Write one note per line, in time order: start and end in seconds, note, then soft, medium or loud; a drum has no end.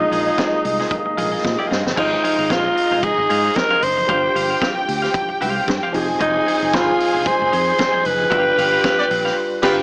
0.00 1.93 A#2 medium
0.00 1.93 F3 medium
0.00 1.93 G#3 medium
0.00 1.94 G#3 medium
0.00 1.67 A#3 medium
0.00 1.93 A#3 medium
0.00 1.46 D#4 medium
0.00 1.93 D#4 medium
0.00 1.94 D#4 medium
0.00 1.67 G#4 medium
0.00 1.67 D#5 medium
0.00 muted clean electric guitar stroke soft
0.11 0.30 A#1 medium
0.11 0.25 F4 medium
0.11 0.26 G#4 medium
0.11 0.26 D#5 medium
0.11 open hi-hat medium
0.11 muted conga medium
0.27 0.37 F4 soft
0.27 0.38 G#4 medium
0.27 0.38 D#5 medium
0.38 0.55 F4 medium
0.38 0.53 G#4 medium
0.38 0.52 D#5 medium
0.38 kick loud
0.38 snare loud
0.38 closed hi-hat medium
0.38 high conga medium
0.53 muted clean electric guitar stroke soft
0.65 0.84 C2 medium
0.65 muted clean electric guitar stroke soft
0.65 open hi-hat medium
0.65 low conga medium
0.80 0.90 F4 soft
0.80 0.91 G#4 medium
0.80 0.91 D#5 medium
0.80 snare soft
0.91 muted clean electric guitar stroke soft
0.91 kick loud
0.91 closed hi-hat medium
0.91 muted conga medium
1.06 muted clean electric guitar stroke soft
1.17 1.37 A#1 medium
1.17 1.32 F4 medium
1.17 1.31 G#4 medium
1.17 1.31 D#5 medium
1.17 open hi-hat medium
1.17 muted conga soft
1.17 low conga medium
1.32 1.43 F4 medium
1.32 1.43 G#4 medium
1.32 1.43 D#5 medium
1.44 1.55 A#2 loud
1.44 muted clean electric guitar stroke soft
1.44 kick loud
1.44 snare medium
1.44 high conga medium
1.59 1.69 F4 medium
1.59 1.69 G#4 medium
1.59 1.70 D#5 medium
1.70 1.82 G2 medium
1.70 1.84 F4 medium
1.70 1.85 G#4 medium
1.70 1.85 D#5 medium
1.70 snare medium
1.85 1.94 G1 medium
1.85 muted clean electric guitar stroke soft
1.85 snare medium
1.85 high conga medium
1.96 2.16 G#1 loud
1.96 4.04 G#3 medium
1.96 4.05 D#4 medium
1.96 4.06 D#4 medium
1.96 2.53 D#4 loud
1.96 4.05 F4 medium
1.96 2.14 G#4 loud
1.96 2.12 C5 loud
1.96 4.06 C5 medium
1.96 4.06 D#5 medium
1.96 2.11 F5 loud
1.96 kick loud
1.96 crash medium
1.96 muted conga medium
2.12 muted clean electric guitar stroke medium
2.24 2.37 G#4 medium
2.24 2.38 C5 medium
2.24 2.37 F5 medium
2.24 open hi-hat medium
2.24 muted conga medium
2.39 2.50 G#1 medium
2.39 2.48 G#4 medium
2.39 2.49 C5 medium
2.39 2.49 F5 medium
2.50 2.69 A#1 medium
2.50 3.05 F4 medium
2.50 2.67 G#4 medium
2.50 2.64 C5 medium
2.50 2.63 F5 loud
2.50 kick loud
2.50 snare loud
2.50 closed hi-hat medium
2.50 high conga medium
2.65 muted clean electric guitar stroke soft
2.76 muted clean electric guitar stroke soft
2.76 open hi-hat medium
2.91 3.02 G#4 soft
2.91 3.02 C5 medium
2.91 3.02 F5 medium
2.91 low conga medium
3.03 3.57 G#4 medium
3.03 muted clean electric guitar stroke soft
3.03 kick loud
3.03 closed hi-hat medium
3.03 muted conga medium
3.18 3.26 G#1 medium
3.18 muted clean electric guitar stroke soft
3.29 3.49 G#2 medium
3.29 3.44 G#4 medium
3.29 3.44 C5 medium
3.29 3.43 F5 medium
3.29 open hi-hat medium
3.29 muted conga soft
3.44 3.54 G#4 medium
3.44 3.55 C5 medium
3.44 3.55 F5 medium
3.56 3.85 A#4 medium
3.56 muted clean electric guitar stroke medium
3.56 kick loud
3.56 snare loud
3.56 closed hi-hat medium
3.56 high conga medium
3.70 3.81 G#4 medium
3.70 3.81 C5 medium
3.70 3.82 F5 medium
3.70 high conga medium
3.82 4.01 F#1 medium
3.82 4.62 C5 loud
3.82 muted clean electric guitar stroke soft
3.82 open hi-hat medium
3.97 muted clean electric guitar stroke medium
3.97 high conga medium
4.07 4.28 G1 loud
4.07 5.89 G3 medium
4.07 5.90 D4 medium
4.07 5.90 F4 medium
4.07 4.26 G4 loud
4.07 5.90 G4 medium
4.07 4.23 C5 loud
4.07 5.91 C5 medium
4.07 4.22 F5 loud
4.07 5.90 G5 loud
4.07 kick loud
4.07 closed hi-hat medium
4.07 muted conga medium
4.23 muted clean electric guitar stroke medium
4.35 4.54 G1 medium
4.35 4.49 G4 medium
4.35 4.49 C5 medium
4.35 4.49 F5 medium
4.35 open hi-hat medium
4.35 muted conga medium
4.50 4.60 G4 soft
4.50 4.61 C5 medium
4.50 4.61 F5 medium
4.61 4.78 G4 medium
4.61 4.76 C5 medium
4.61 4.75 F5 loud
4.61 kick loud
4.61 snare loud
4.61 closed hi-hat medium
4.61 high conga medium
4.76 muted clean electric guitar stroke soft
4.88 5.07 D2 medium
4.88 muted clean electric guitar stroke soft
4.88 open hi-hat medium
5.02 5.13 G4 soft
5.02 5.13 C5 medium
5.02 5.14 F5 medium
5.02 snare soft
5.14 muted clean electric guitar stroke soft
5.14 kick loud
5.14 closed hi-hat medium
5.14 muted conga medium
5.29 muted clean electric guitar stroke soft
5.41 5.60 C2 medium
5.41 5.56 G4 medium
5.41 5.55 C5 medium
5.41 5.55 F5 medium
5.41 open hi-hat medium
5.41 muted conga soft
5.41 low conga medium
5.56 5.66 G4 medium
5.56 5.67 C5 medium
5.56 5.67 F5 medium
5.67 5.78 G2 loud
5.67 muted clean electric guitar stroke soft
5.67 kick loud
5.67 snare loud
5.67 closed hi-hat medium
5.67 high conga medium
5.82 5.95 G4 medium
5.82 5.94 C5 medium
5.82 5.97 F5 medium
5.82 high conga medium
5.92 6.10 F1 loud
5.92 8.00 F3 medium
5.92 8.01 C4 medium
5.92 8.01 D#4 medium
5.92 6.08 D#4 medium
5.92 6.02 G4 medium
5.92 8.28 G#4 medium
5.92 6.08 G#4 medium
5.92 6.08 C5 medium
5.92 8.28 G#5 loud
5.92 open hi-hat medium
6.01 8.05 G#4 medium
6.09 6.18 E1 medium
6.09 high conga medium
6.19 6.39 F1 loud
6.19 8.29 F3 medium
6.19 8.29 D#4 medium
6.19 6.37 D#4 medium
6.19 6.76 D#4 loud
6.19 8.29 G#4 medium
6.19 6.35 G#4 loud
6.19 6.34 C5 medium
6.19 kick loud
6.19 closed hi-hat medium
6.19 muted conga medium
6.36 muted clean electric guitar stroke medium
6.47 6.61 D#4 medium
6.47 6.61 G#4 medium
6.47 6.60 C5 medium
6.47 open hi-hat medium
6.47 muted conga medium
6.62 6.74 F1 medium
6.62 6.72 D#4 soft
6.62 6.72 G#4 medium
6.62 6.72 C5 medium
6.73 6.92 G1 medium
6.73 6.90 D#4 medium
6.73 7.29 F4 medium
6.73 6.87 G#4 medium
6.73 6.86 C5 medium
6.73 kick loud
6.73 snare loud
6.73 closed hi-hat medium
6.73 high conga medium
6.87 muted clean electric guitar stroke soft
6.99 muted clean electric guitar stroke medium
6.99 open hi-hat medium
7.13 7.24 D#4 medium
7.13 7.24 G#4 medium
7.13 7.25 C5 medium
7.13 low conga medium
7.25 8.08 C5 loud
7.25 muted clean electric guitar stroke soft
7.25 kick loud
7.25 closed hi-hat medium
7.25 muted conga medium
7.40 7.50 F1 medium
7.40 muted clean electric guitar stroke soft
7.52 7.72 F2 medium
7.52 7.67 D#4 medium
7.52 7.66 G#4 medium
7.52 7.66 C5 loud
7.52 open hi-hat medium
7.67 7.77 D#4 medium
7.67 7.78 G#4 medium
7.67 7.78 C5 medium
7.78 muted clean electric guitar stroke soft
7.78 kick loud
7.78 snare loud
7.78 closed hi-hat medium
7.78 high conga medium
7.92 8.03 D#4 medium
7.92 8.03 G#4 medium
7.92 8.04 C5 medium
7.92 high conga medium
8.04 8.24 F#1 medium
8.04 9.83 B4 loud
8.04 muted clean electric guitar stroke medium
8.04 open hi-hat medium
8.19 muted clean electric guitar stroke soft
8.19 high conga medium
8.30 8.50 G1 medium
8.30 9.34 G3 medium
8.30 9.83 G3 medium
8.30 9.35 D4 medium
8.30 9.83 F4 medium
8.30 9.35 F4 medium
8.30 8.52 G4 loud
8.30 9.35 G4 medium
8.30 8.45 B4 medium
8.30 9.83 B4 medium
8.30 9.36 B4 medium
8.30 8.44 F5 loud
8.30 9.35 G5 medium
8.30 kick loud
8.30 closed hi-hat medium
8.30 muted conga medium
8.46 muted clean electric guitar stroke soft
8.57 8.77 G1 loud
8.57 8.71 G4 medium
8.57 8.71 B4 medium
8.57 8.71 F5 medium
8.57 open hi-hat medium
8.57 muted conga medium
8.72 8.83 G4 medium
8.72 8.83 B4 medium
8.72 8.83 F5 medium
8.84 9.01 G4 medium
8.84 8.99 B4 medium
8.84 8.98 F5 loud
8.84 kick loud
8.84 snare loud
8.84 closed hi-hat medium
8.84 high conga medium
8.99 9.07 B3 medium
8.99 9.07 G4 medium
8.99 9.07 D5 loud
9.10 9.30 A#1 loud
9.10 muted clean electric guitar stroke soft
9.10 open hi-hat medium
9.25 9.36 G4 soft
9.25 9.36 B4 medium
9.25 9.36 F5 medium
9.25 snare soft
9.62 9.82 G1 loud
9.62 9.82 G3 loud
9.62 9.77 G3 loud
9.62 9.82 D4 loud
9.62 9.77 F4 medium
9.62 9.82 F4 loud
9.62 9.81 G4 loud
9.62 9.82 G4 loud
9.62 9.82 B4 loud
9.62 9.77 B4 loud
9.62 9.82 F5 loud
9.62 9.82 G5 loud
9.62 kick loud
9.62 snare loud
9.62 crash medium